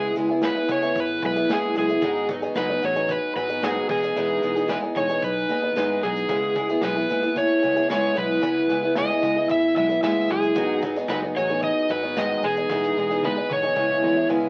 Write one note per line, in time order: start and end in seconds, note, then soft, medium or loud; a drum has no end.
0.00 0.11 C#2 loud
0.00 0.16 C#3 medium
0.00 0.15 G#3 medium
0.00 0.16 B3 medium
0.00 0.16 E4 medium
0.00 0.13 G#4 medium
0.00 0.16 G#4 medium
0.15 0.48 C#2 loud
0.15 0.29 G#3 medium
0.15 0.29 B3 medium
0.15 0.29 E4 medium
0.15 0.28 G#4 medium
0.15 shaker medium
0.29 0.42 B3 soft
0.29 0.43 E4 medium
0.29 0.42 G#4 medium
0.41 0.56 C#3 medium
0.41 0.56 G#3 medium
0.41 0.56 B3 medium
0.41 0.55 E4 medium
0.41 0.54 G#4 medium
0.41 0.69 B4 medium
0.41 snare loud
0.41 shaker medium
0.55 0.68 B3 soft
0.55 0.68 E4 medium
0.55 0.69 G#4 medium
0.68 0.91 C#2 loud
0.68 0.82 G#3 medium
0.68 0.82 B3 medium
0.68 0.82 E4 medium
0.68 0.81 G#4 medium
0.68 0.98 C#5 loud
0.68 kick loud
0.68 shaker medium
0.82 1.22 B3 medium
0.82 1.22 E4 medium
0.82 1.22 G#4 medium
0.82 shaker medium
0.96 1.17 G#1 loud
0.96 kick loud
0.96 shaker medium
1.00 1.25 B4 loud
1.22 1.44 B1 loud
1.22 1.36 G#3 medium
1.22 1.36 B3 medium
1.22 1.36 E4 medium
1.22 1.35 G#4 medium
1.22 1.52 B4 loud
1.22 kick medium
1.22 shaker medium
1.36 1.49 B3 soft
1.36 1.49 E4 medium
1.36 1.49 G#4 medium
1.36 shaker medium
1.49 1.71 D#2 medium
1.49 1.76 C#3 medium
1.49 1.75 G#3 medium
1.49 1.75 B3 medium
1.49 1.76 E4 medium
1.49 1.77 G#4 medium
1.49 1.77 G#4 loud
1.49 snare loud
1.49 shaker medium
1.75 1.97 F#1 medium
1.75 1.89 G#3 medium
1.75 1.89 B3 medium
1.75 1.89 E4 medium
1.75 1.88 G#4 medium
1.75 2.27 G#4 medium
1.75 shaker medium
1.89 2.03 B3 soft
1.89 2.03 E4 medium
1.89 2.02 G#4 medium
1.89 shaker soft
2.02 2.46 G#1 loud
2.02 2.29 G#2 medium
2.02 2.30 D#3 medium
2.02 2.27 F#3 medium
2.02 2.28 B3 medium
2.02 2.29 D#4 medium
2.02 2.30 G#4 medium
2.02 kick loud
2.02 shaker medium
2.28 2.42 F#3 medium
2.28 2.42 B3 medium
2.28 2.42 D#4 medium
2.28 2.41 G#4 medium
2.28 kick loud
2.28 shaker medium
2.42 2.55 F#3 medium
2.42 2.55 B3 medium
2.42 2.56 D#4 medium
2.42 2.56 G#4 medium
2.42 shaker medium
2.55 2.77 F#1 loud
2.55 2.69 G#2 medium
2.55 2.69 D#3 medium
2.55 2.69 F#3 medium
2.55 2.69 B3 medium
2.55 2.69 D#4 medium
2.55 2.68 G#4 medium
2.55 2.84 B4 medium
2.55 snare loud
2.55 shaker medium
2.69 2.81 F#3 soft
2.69 2.82 B3 medium
2.69 2.83 D#4 medium
2.69 2.82 G#4 medium
2.82 3.15 A1 loud
2.82 2.96 F#3 medium
2.82 2.96 B3 medium
2.82 2.95 D#4 medium
2.82 2.94 G#4 medium
2.82 3.11 C#5 medium
2.82 shaker medium
2.96 3.34 F#3 soft
2.96 3.35 B3 soft
2.96 3.36 D#4 medium
2.96 3.36 G#4 medium
2.96 shaker medium
3.09 3.35 B4 loud
3.09 kick loud
3.09 shaker medium
3.36 3.80 G#1 loud
3.36 3.49 F#3 medium
3.36 3.49 B3 medium
3.36 3.49 D#4 medium
3.36 3.48 G#4 medium
3.36 3.64 B4 medium
3.36 shaker soft
3.49 3.62 F#3 soft
3.49 3.62 B3 medium
3.49 3.62 D#4 soft
3.49 3.62 G#4 medium
3.49 shaker medium
3.62 3.89 G#2 medium
3.62 3.89 D#3 medium
3.62 3.89 F#3 loud
3.62 3.89 B3 medium
3.62 3.90 D#4 medium
3.62 3.90 G#4 medium
3.62 3.89 G#4 medium
3.62 snare loud
3.62 shaker medium
3.89 4.11 E1 medium
3.89 4.02 G#3 medium
3.89 4.03 B3 medium
3.89 4.03 D#4 medium
3.89 4.72 G#4 medium
3.89 4.02 G#4 medium
3.89 kick loud
3.89 crash medium
4.03 4.16 B3 soft
4.03 4.16 D#4 soft
4.03 4.16 G#4 soft
4.03 shaker medium
4.16 4.38 E1 loud
4.16 4.43 E3 medium
4.16 4.41 G#3 medium
4.16 4.42 B3 medium
4.16 4.42 D#4 medium
4.16 4.43 G#4 medium
4.16 shaker medium
4.42 4.75 E1 loud
4.42 4.56 G#3 medium
4.42 4.56 B3 medium
4.42 4.55 D#4 medium
4.42 4.54 G#4 medium
4.42 shaker medium
4.55 4.69 B3 soft
4.55 4.69 D#4 medium
4.55 4.69 G#4 medium
4.55 snare soft
4.55 shaker medium
4.68 4.82 E3 medium
4.68 4.83 G#3 medium
4.68 4.83 B3 medium
4.68 4.82 D#4 medium
4.68 4.81 G#4 medium
4.68 4.76 B4 medium
4.68 snare loud
4.68 shaker medium
4.82 4.95 B3 soft
4.82 4.96 D#4 medium
4.82 4.96 G#4 medium
4.96 5.18 E1 loud
4.96 5.09 G#3 medium
4.96 5.09 B3 medium
4.96 5.09 D#4 medium
4.96 5.08 G#4 medium
4.96 5.21 C#5 medium
4.96 kick medium
4.96 shaker medium
5.09 5.48 B3 soft
5.09 5.49 D#4 medium
5.09 5.49 G#4 medium
5.09 shaker medium
5.22 5.44 B1 medium
5.22 6.06 B4 medium
5.22 kick medium
5.22 shaker medium
5.49 5.71 D#2 loud
5.49 5.62 G#3 medium
5.49 5.63 B3 medium
5.49 5.62 D#4 medium
5.49 5.61 G#4 medium
5.49 shaker medium
5.62 5.75 B3 soft
5.62 5.76 D#4 medium
5.62 5.76 G#4 medium
5.75 5.98 G#1 medium
5.75 6.02 E3 medium
5.75 6.01 G#3 medium
5.75 6.02 B3 medium
5.75 6.03 D#4 medium
5.75 6.03 G#4 medium
5.75 snare loud
5.75 shaker medium
6.02 6.25 B1 medium
6.02 6.29 G#3 medium
6.02 6.29 B3 medium
6.02 6.30 D#4 medium
6.02 6.85 G#4 medium
6.02 6.30 G#4 medium
6.02 shaker medium
6.16 shaker medium
6.29 6.73 C#2 loud
6.29 6.56 C#3 medium
6.29 6.55 G#3 medium
6.29 6.56 B3 medium
6.29 6.56 E4 medium
6.29 6.57 G#4 medium
6.29 kick loud
6.29 shaker medium
6.55 6.69 G#3 medium
6.55 6.70 B3 medium
6.55 6.69 E4 medium
6.55 6.68 G#4 medium
6.55 kick loud
6.55 shaker medium
6.69 6.82 B3 medium
6.69 6.83 E4 medium
6.69 6.83 G#4 medium
6.69 snare soft
6.69 shaker medium
6.81 7.05 B1 medium
6.81 6.96 C#3 medium
6.81 6.97 G#3 medium
6.81 6.96 B3 medium
6.81 6.96 E4 medium
6.81 6.95 G#4 medium
6.81 7.38 B4 medium
6.81 snare loud
6.81 shaker medium
6.96 7.09 B3 soft
6.96 7.10 E4 medium
6.96 7.09 G#4 medium
7.09 7.43 D#2 loud
7.09 7.23 G#3 medium
7.09 7.23 B3 medium
7.09 7.23 E4 medium
7.09 7.22 G#4 medium
7.09 shaker medium
7.23 7.62 B3 soft
7.23 7.63 E4 soft
7.23 7.63 G#4 medium
7.23 shaker medium
7.36 7.86 C#5 loud
7.36 kick medium
7.36 shaker medium
7.62 8.07 C#2 loud
7.62 7.76 G#3 medium
7.62 7.76 B3 medium
7.62 7.76 E4 medium
7.62 7.75 G#4 medium
7.62 shaker soft
7.76 7.89 B3 soft
7.76 7.89 E4 medium
7.76 7.89 G#4 medium
7.76 shaker medium
7.89 8.16 C#3 medium
7.89 8.14 G#3 medium
7.89 8.15 B3 medium
7.89 8.16 E4 medium
7.89 8.17 G#4 loud
7.89 8.18 C#5 loud
7.89 snare loud
7.89 shaker medium
8.15 8.38 B1 loud
8.15 8.41 G#3 medium
8.15 8.42 B3 medium
8.15 8.42 E4 medium
8.15 8.42 G#4 medium
8.15 8.93 B4 loud
8.15 shaker medium
8.42 8.65 C#2 loud
8.42 8.69 C#3 medium
8.42 8.68 G#3 medium
8.42 8.68 B3 medium
8.42 8.69 E4 medium
8.42 8.70 G#4 medium
8.42 kick loud
8.42 shaker medium
8.69 9.02 C#2 loud
8.69 8.83 G#3 medium
8.69 8.83 B3 medium
8.69 8.83 E4 medium
8.69 8.81 G#4 medium
8.69 shaker medium
8.82 8.95 B3 medium
8.82 8.96 E4 medium
8.82 8.96 G#4 medium
8.95 9.09 C#3 medium
8.95 9.10 G#3 medium
8.95 9.10 B3 medium
8.95 9.09 E4 medium
8.95 9.08 G#4 loud
8.95 9.47 D#5 medium
8.95 snare loud
8.95 shaker medium
9.10 9.22 B3 soft
9.10 9.23 E4 medium
9.10 9.23 G#4 medium
9.22 9.45 C#2 loud
9.22 9.36 G#3 medium
9.22 9.36 B3 medium
9.22 9.36 E4 medium
9.22 9.35 G#4 medium
9.22 kick loud
9.22 shaker medium
9.36 9.76 B3 soft
9.36 9.76 E4 medium
9.36 9.76 G#4 medium
9.49 9.71 G#1 loud
9.49 9.76 E5 loud
9.49 kick medium
9.49 shaker medium
9.76 9.98 B1 loud
9.76 9.89 G#3 medium
9.76 9.90 B3 medium
9.76 9.89 E4 medium
9.76 9.87 G#4 medium
9.76 10.03 E5 loud
9.76 kick medium
9.76 shaker soft
9.89 10.02 B3 soft
9.89 10.03 E4 soft
9.89 10.02 G#4 medium
9.89 shaker medium
10.03 10.25 D#2 medium
10.03 10.29 C#3 medium
10.03 10.28 G#3 medium
10.03 10.29 B3 medium
10.03 10.29 E4 medium
10.03 10.30 G#4 medium
10.03 10.31 E5 loud
10.03 snare loud
10.03 shaker medium
10.29 10.56 F#1 loud
10.29 10.56 G#3 medium
10.29 10.56 B3 medium
10.29 10.57 E4 medium
10.29 10.80 G#4 medium
10.29 10.56 G#4 medium
10.29 shaker soft
10.42 shaker medium
10.55 11.00 G#1 loud
10.55 10.83 G#2 medium
10.55 10.83 D#3 medium
10.55 10.82 F#3 medium
10.55 10.82 B3 medium
10.55 10.83 D#4 medium
10.55 10.83 G#4 medium
10.55 kick loud
10.55 shaker loud
10.82 10.96 F#3 medium
10.82 10.97 B3 medium
10.82 10.96 D#4 medium
10.82 10.95 G#4 medium
10.82 kick loud
10.82 shaker medium
10.95 11.09 F#3 soft
10.95 11.10 B3 medium
10.95 11.10 D#4 medium
10.95 11.10 G#4 medium
10.95 snare soft
10.95 shaker medium
11.08 11.32 F#1 loud
11.08 11.23 G#2 medium
11.08 11.23 D#3 medium
11.08 11.23 F#3 medium
11.08 11.23 B3 medium
11.08 11.22 D#4 medium
11.08 11.21 G#4 medium
11.08 11.17 B4 medium
11.08 snare loud
11.08 shaker medium
11.23 11.34 F#3 soft
11.23 11.36 B3 medium
11.23 11.36 D#4 medium
11.23 11.36 G#4 soft
11.35 11.69 A1 loud
11.35 11.49 F#3 medium
11.35 11.50 B3 medium
11.35 11.49 D#4 medium
11.35 11.48 G#4 medium
11.35 11.61 C#5 loud
11.35 shaker medium
11.50 11.88 F#3 medium
11.50 11.89 B3 medium
11.50 11.90 D#4 medium
11.50 11.90 G#4 medium
11.62 11.88 D#5 loud
11.62 kick loud
11.62 shaker medium
11.89 12.33 G#1 loud
11.89 12.03 F#3 medium
11.89 12.03 B3 medium
11.89 12.02 D#4 medium
11.89 12.01 G#4 medium
11.89 12.18 B4 medium
11.89 shaker soft
12.02 12.16 F#3 soft
12.02 12.16 B3 soft
12.02 12.17 D#4 medium
12.02 12.16 G#4 medium
12.16 12.43 G#2 medium
12.16 12.43 D#3 medium
12.16 12.43 F#3 medium
12.16 12.43 B3 medium
12.16 12.44 D#4 medium
12.16 12.44 G#4 medium
12.16 12.45 D#5 loud
12.16 snare loud
12.16 shaker medium
12.43 12.65 E1 loud
12.43 12.56 G#3 medium
12.43 12.57 B3 medium
12.43 12.57 D#4 medium
12.43 13.26 G#4 loud
12.43 12.55 G#4 medium
12.43 shaker medium
12.56 12.70 B3 soft
12.56 12.70 D#4 soft
12.56 12.70 G#4 medium
12.56 shaker medium
12.70 12.92 E1 loud
12.70 12.96 E3 medium
12.70 12.96 G#3 medium
12.70 12.96 B3 medium
12.70 12.97 D#4 medium
12.70 12.97 G#4 medium
12.70 kick loud
12.70 snare medium
12.83 snare medium
12.97 13.29 E1 loud
12.97 13.10 G#3 medium
12.97 13.10 B3 medium
12.97 13.10 D#4 medium
12.97 13.08 G#4 medium
13.10 13.23 B3 soft
13.10 13.23 D#4 medium
13.10 13.23 G#4 medium
13.10 snare medium
13.23 13.37 E3 medium
13.23 13.37 G#3 medium
13.23 13.37 B3 medium
13.23 13.37 D#4 medium
13.23 13.35 G#4 medium
13.23 13.51 B4 medium
13.23 high tom medium
13.36 13.49 B3 soft
13.36 13.50 D#4 medium
13.36 13.50 G#4 medium
13.49 13.72 E1 loud
13.49 13.63 G#3 medium
13.49 13.63 B3 medium
13.49 13.63 D#4 medium
13.49 13.62 G#4 medium
13.49 14.27 C#5 medium
13.49 high tom medium
13.63 13.76 B3 soft
13.63 13.77 D#4 medium
13.63 13.76 G#4 medium
13.63 mid tom medium
13.76 13.98 C#2 loud
13.76 14.03 C#3 medium
13.76 14.02 G#3 medium
13.76 14.03 B3 medium
13.76 14.03 E4 medium
13.76 14.04 G#4 medium
13.76 kick medium
13.89 mid tom medium
14.02 14.25 E2 loud
14.02 14.16 G#3 medium
14.02 14.17 B3 medium
14.02 14.16 E4 medium
14.02 14.14 G#4 medium
14.02 mid tom loud
14.16 14.29 B3 soft
14.16 14.29 E4 medium
14.16 14.29 G#4 medium
14.29 14.49 C#2 loud
14.29 14.49 C#3 medium
14.29 14.49 G#3 medium
14.29 14.49 B3 medium
14.29 14.49 E4 medium
14.29 14.49 G#4 medium
14.29 mid tom loud
14.43 floor tom loud